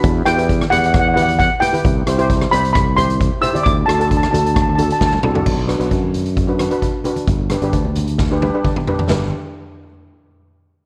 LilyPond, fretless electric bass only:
\new Staff \with { instrumentName = "Fretless electric bass" } { \clef bass \time 4/4 \key g \major \tempo 4 = 132 e,8 e,4 e,2 r8 | c,8 c,4 c,2 r8 | d,8 d,4 d,4. d,8 c,8 | b,,8. b,,16 fis,2 r4 |
g,,8. g,,16 d,2 r4 | g,,8 r2. r8 | }